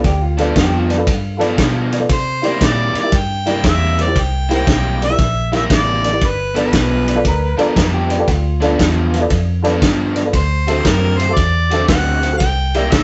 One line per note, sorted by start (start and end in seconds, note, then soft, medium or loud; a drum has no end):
0.04 0.54 D2 medium
0.04 0.21 G4 medium
0.04 kick medium
0.04 snare soft
0.04 ride medium
0.22 0.38 F4 medium
0.37 0.54 G2 medium
0.37 0.54 F3 medium
0.37 0.55 B3 medium
0.37 0.55 D4 medium
0.37 0.47 F4 medium
0.37 0.47 A4 medium
0.37 0.48 B4 medium
0.37 0.48 D5 medium
0.37 snare soft
0.37 ride medium
0.55 1.06 F2 medium
0.55 0.95 G2 medium
0.55 0.95 F3 medium
0.55 0.95 B3 medium
0.55 0.95 D4 medium
0.55 0.74 G4 loud
0.55 kick medium
0.55 snare loud
0.55 ride medium
0.77 0.91 F4 medium
0.89 1.08 D4 medium
0.89 0.93 B4 soft
0.89 0.94 D5 medium
0.89 snare soft
0.89 ride medium
0.97 1.06 F4 medium
0.97 1.07 A4 medium
0.97 1.07 B4 medium
0.97 1.07 D5 medium
1.07 1.57 G2 medium
1.07 kick medium
1.07 snare soft
1.07 ride medium
1.11 2.01 F4 medium
1.37 1.58 F3 medium
1.37 1.58 B3 medium
1.37 1.58 D4 medium
1.37 1.48 F4 medium
1.37 1.48 A4 medium
1.37 1.49 B4 medium
1.37 1.49 D5 medium
1.37 ride medium
1.41 1.56 G2 medium
1.41 snare soft
1.58 1.97 G2 medium
1.58 2.08 B2 medium
1.58 1.98 F3 medium
1.58 1.98 B3 medium
1.58 1.98 D4 medium
1.58 kick medium
1.58 snare loud
1.58 ride medium
1.91 1.96 B4 medium
1.91 1.97 D5 medium
1.91 snare soft
1.91 ride medium
2.00 2.09 F4 medium
2.00 2.09 A4 medium
2.00 2.09 B4 medium
2.00 2.10 D5 medium
2.09 2.60 C3 medium
2.09 2.66 C5 loud
2.09 kick medium
2.09 snare soft
2.09 ride medium
2.42 2.60 C3 medium
2.42 2.60 G3 medium
2.42 2.61 A#3 medium
2.42 2.52 E4 medium
2.42 2.61 E4 medium
2.42 2.52 G4 medium
2.42 2.52 A#4 medium
2.42 2.53 D5 medium
2.42 snare soft
2.42 ride medium
2.61 2.93 A#2 medium
2.61 3.00 C3 medium
2.61 3.01 G3 medium
2.61 3.01 A#3 medium
2.61 3.01 E4 medium
2.61 2.97 D5 medium
2.61 kick medium
2.61 snare loud
2.61 ride medium
2.93 2.99 A#4 soft
2.93 3.00 D5 soft
2.93 muted fingered electric bass stroke soft
2.93 snare soft
2.93 ride medium
3.00 3.12 E4 medium
3.00 3.12 G4 medium
3.00 3.13 A#4 medium
3.00 3.18 D5 medium
3.04 3.13 E5 medium
3.12 3.62 G2 medium
3.12 kick medium
3.12 snare soft
3.12 ride medium
3.17 3.66 G5 loud
3.46 3.63 C3 medium
3.46 3.63 G3 medium
3.46 3.64 A#3 medium
3.46 3.55 E4 medium
3.46 3.64 E4 medium
3.46 3.55 G4 medium
3.46 3.56 A#4 medium
3.46 3.55 D5 medium
3.46 snare soft
3.46 ride medium
3.64 4.14 E2 medium
3.64 4.03 C3 medium
3.64 4.04 G3 medium
3.64 4.04 A#3 medium
3.64 4.04 E4 medium
3.64 kick medium
3.64 snare loud
3.64 ride medium
3.69 4.04 E5 loud
3.98 4.03 A#4 soft
3.98 4.03 C5 medium
3.98 snare soft
3.98 ride medium
4.03 4.23 D5 medium
4.07 4.16 E4 medium
4.07 4.16 G4 medium
4.07 4.16 A#4 medium
4.07 4.16 C5 medium
4.16 4.66 C2 medium
4.16 kick medium
4.16 snare soft
4.16 ride medium
4.22 4.53 G5 loud
4.49 4.64 C3 medium
4.49 4.65 G3 medium
4.49 4.65 A#3 medium
4.49 4.66 E4 medium
4.49 4.59 E4 medium
4.49 4.59 G4 medium
4.49 4.59 A#4 medium
4.49 4.60 C5 medium
4.49 snare soft
4.49 ride medium
4.55 5.00 G5 medium
4.66 5.17 B1 medium
4.66 5.06 C3 medium
4.66 5.06 G3 medium
4.66 5.06 A#3 medium
4.66 5.06 E4 medium
4.66 kick medium
4.66 snare loud
4.66 ride medium
5.00 5.05 A#4 soft
5.00 5.06 D5 soft
5.00 snare soft
5.00 ride medium
5.04 5.51 E5 loud
5.09 5.18 E4 medium
5.09 5.19 G4 medium
5.09 5.19 A#4 medium
5.09 5.19 D5 medium
5.19 5.69 A#1 medium
5.19 kick medium
5.19 snare soft
5.19 ride medium
5.52 5.68 C3 medium
5.52 5.68 G3 medium
5.52 5.69 A#3 loud
5.52 5.61 E4 medium
5.52 5.69 E4 loud
5.52 5.61 G4 medium
5.52 5.61 A#4 medium
5.52 5.62 E5 medium
5.52 snare soft
5.52 ride medium
5.57 5.64 E5 medium
5.69 6.20 A1 medium
5.69 6.09 C3 medium
5.69 6.09 G3 medium
5.69 6.09 A#3 medium
5.69 6.10 E4 medium
5.69 kick medium
5.69 snare loud
5.69 ride medium
5.75 6.27 D5 loud
6.03 6.08 A#4 soft
6.03 6.09 D5 medium
6.03 snare soft
6.03 ride medium
6.12 6.21 E4 medium
6.12 6.21 G4 medium
6.12 6.22 A#4 soft
6.12 6.22 D5 medium
6.21 6.72 G1 medium
6.21 kick medium
6.21 snare soft
6.21 ride medium
6.26 6.58 B4 loud
6.55 6.72 G2 medium
6.55 6.73 F3 medium
6.55 6.73 B3 medium
6.55 6.73 D4 medium
6.55 6.64 F4 medium
6.55 6.64 A4 medium
6.55 6.65 B4 medium
6.55 6.65 D5 medium
6.55 snare soft
6.55 ride medium
6.61 8.09 B4 medium
6.73 7.23 B1 medium
6.73 7.12 G2 medium
6.73 7.13 F3 medium
6.73 7.13 B3 medium
6.73 7.13 D4 medium
6.73 kick medium
6.73 snare loud
6.73 ride medium
7.08 7.12 B4 soft
7.08 7.12 D5 soft
7.08 snare soft
7.08 ride medium
7.15 7.24 F4 medium
7.15 7.25 A4 medium
7.15 7.25 B4 medium
7.15 7.25 D5 medium
7.25 7.56 D2 medium
7.25 7.59 A#4 medium
7.25 kick medium
7.25 snare soft
7.25 ride medium
7.57 7.73 G2 medium
7.57 7.74 F3 medium
7.57 7.74 B3 medium
7.57 7.75 D4 loud
7.57 7.67 F4 medium
7.57 7.67 A4 medium
7.57 7.67 B4 medium
7.57 7.68 D5 loud
7.57 muted fingered electric bass stroke soft
7.57 snare soft
7.57 ride medium
7.61 7.94 A#4 medium
7.74 8.26 F2 medium
7.74 8.15 G2 medium
7.74 8.15 F3 medium
7.74 8.15 B3 medium
7.74 8.15 D4 medium
7.74 kick medium
7.74 snare loud
7.74 ride medium
7.94 8.30 G4 medium
8.08 8.14 B4 medium
8.08 8.15 D5 medium
8.08 snare soft
8.08 ride medium
8.18 8.27 F4 medium
8.18 8.28 A4 medium
8.18 8.28 B4 medium
8.18 8.29 D5 medium
8.28 8.78 D2 medium
8.28 8.62 F4 medium
8.28 kick medium
8.28 snare soft
8.28 ride medium
8.60 8.75 G2 medium
8.60 8.76 F3 medium
8.60 8.77 B3 medium
8.60 8.77 D4 medium
8.60 8.79 D4 medium
8.60 8.71 F4 medium
8.60 8.70 A4 medium
8.60 8.71 B4 medium
8.60 8.71 D5 medium
8.60 snare soft
8.60 ride medium
8.77 9.29 E2 medium
8.77 9.17 G2 medium
8.77 9.18 F3 medium
8.77 9.18 B3 medium
8.77 9.18 D4 medium
8.77 9.30 F4 medium
8.77 kick medium
8.77 snare loud
8.77 ride medium
9.12 9.17 B4 soft
9.12 9.18 F5 medium
9.12 snare soft
9.12 ride medium
9.20 9.30 F4 medium
9.20 9.30 A4 medium
9.20 9.30 B4 medium
9.20 9.31 D5 medium
9.30 9.81 F2 medium
9.30 kick medium
9.30 snare soft
9.30 ride medium
9.62 9.80 G2 medium
9.62 9.80 F3 medium
9.62 9.81 B3 medium
9.62 9.81 D4 medium
9.62 9.72 F4 medium
9.62 9.73 A4 medium
9.62 9.73 B4 medium
9.62 9.73 D5 loud
9.62 snare soft
9.62 ride medium
9.81 10.21 G2 medium
9.81 10.32 G2 medium
9.81 10.21 F3 medium
9.81 10.22 B3 medium
9.81 10.22 D4 medium
9.81 kick medium
9.81 snare loud
9.81 ride medium
10.14 10.20 B4 medium
10.14 10.21 D5 medium
10.14 snare soft
10.14 ride medium
10.24 10.33 F4 medium
10.24 10.34 A4 medium
10.24 10.34 B4 medium
10.24 10.34 D5 medium
10.33 10.84 D2 medium
10.33 10.87 C5 loud
10.33 kick medium
10.33 snare soft
10.33 ride medium
10.67 10.84 D3 medium
10.67 10.84 A3 medium
10.67 10.84 C4 medium
10.67 10.76 F#4 medium
10.67 10.85 F#4 medium
10.67 10.77 A4 medium
10.67 10.77 C5 medium
10.67 10.77 E5 medium
10.67 snare soft
10.67 ride medium
10.85 11.35 F#2 medium
10.85 11.25 D3 medium
10.85 11.25 A3 medium
10.85 11.25 C4 medium
10.85 11.25 F#4 medium
10.85 11.19 A#4 medium
10.85 kick medium
10.85 snare loud
10.85 ride medium
11.18 11.36 C5 medium
11.18 11.24 C5 soft
11.18 11.25 E5 soft
11.18 snare soft
11.18 ride medium
11.28 11.37 F#4 medium
11.28 11.37 A4 medium
11.28 11.38 C5 medium
11.28 11.38 E5 medium
11.34 11.87 E2 medium
11.34 11.87 D5 loud
11.34 kick medium
11.34 snare soft
11.34 ride medium
11.70 11.86 D3 medium
11.70 11.87 A3 medium
11.70 11.87 C4 medium
11.70 11.88 F#4 medium
11.70 11.80 F#4 medium
11.70 11.81 A4 medium
11.70 11.81 C5 medium
11.70 11.81 E5 medium
11.70 snare soft
11.70 ride medium
11.88 12.39 D2 medium
11.88 12.28 D3 medium
11.88 12.28 A3 medium
11.88 12.28 C4 medium
11.88 12.28 F#4 medium
11.88 12.36 F#5 loud
11.88 kick medium
11.88 snare loud
11.88 ride medium
12.22 12.27 C5 soft
12.22 12.28 E5 soft
12.22 snare soft
12.22 ride medium
12.32 12.41 F#4 medium
12.32 12.41 A4 medium
12.32 12.41 C5 medium
12.32 12.42 F#5 medium
12.38 12.90 C2 medium
12.38 12.94 G5 loud
12.38 kick medium
12.38 snare soft
12.38 ride medium
12.74 12.90 C3 medium
12.74 12.91 G3 medium
12.74 12.91 A#3 medium
12.74 12.91 E4 medium
12.74 12.83 G4 medium
12.74 12.84 A#4 medium
12.74 12.84 D5 medium
12.74 12.84 E5 medium
12.74 snare soft
12.74 ride medium
12.91 13.03 B1 medium
12.91 13.03 C3 medium
12.91 13.03 G3 medium
12.91 13.03 A#3 medium
12.91 13.03 E4 medium
12.91 13.03 E5 loud
12.91 kick medium
12.91 snare loud
12.91 ride medium